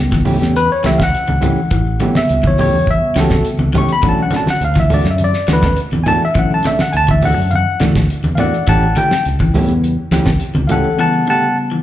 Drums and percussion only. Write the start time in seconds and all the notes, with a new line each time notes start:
0.12 kick, snare, high conga
0.25 open hi-hat, low conga
0.42 snare, closed hi-hat
0.56 closed hi-hat
0.84 snare, closed hi-hat, high conga
1.00 kick, snare, closed hi-hat
1.15 closed hi-hat
1.28 high conga
1.43 closed hi-hat, high conga, low conga
1.71 kick, closed hi-hat
2.00 closed hi-hat, high conga
2.15 snare, closed hi-hat, high conga
2.29 closed hi-hat
2.44 kick, high conga
2.58 open hi-hat, low conga
2.87 kick, closed hi-hat
3.16 snare, closed hi-hat, high conga
3.30 kick, snare, low conga
3.45 closed hi-hat
3.59 high conga
3.75 closed hi-hat, high conga, low conga
3.89 closed hi-hat
4.03 kick, closed hi-hat
4.31 snare, closed hi-hat, high conga
4.46 snare, closed hi-hat, high conga
4.61 closed hi-hat
4.75 kick, snare, high conga
4.90 open hi-hat, low conga
5.05 snare, closed hi-hat
5.18 closed hi-hat, high conga
5.33 snare
5.48 snare, closed hi-hat, high conga
5.62 kick, snare, closed hi-hat, low conga
5.77 closed hi-hat
5.93 high conga
6.06 closed hi-hat, low conga
6.34 kick, closed hi-hat
6.64 snare, closed hi-hat, high conga
6.79 snare, closed hi-hat, high conga
6.93 closed hi-hat
7.09 kick, high conga
7.21 open hi-hat, low conga
7.51 closed hi-hat, high conga
7.80 snare, closed hi-hat, high conga
7.96 kick, snare, low conga
8.10 closed hi-hat
8.24 high conga
8.38 closed hi-hat, low conga
8.54 closed hi-hat
8.67 kick, closed hi-hat
8.97 closed hi-hat, high conga
9.11 snare, closed hi-hat
9.25 closed hi-hat
9.40 kick, high conga
9.54 open hi-hat, low conga
9.68 closed hi-hat
9.84 closed hi-hat
10.12 snare, closed hi-hat, high conga
10.26 kick, snare, closed hi-hat, low conga
10.40 closed hi-hat
10.55 high conga
10.69 closed hi-hat, low conga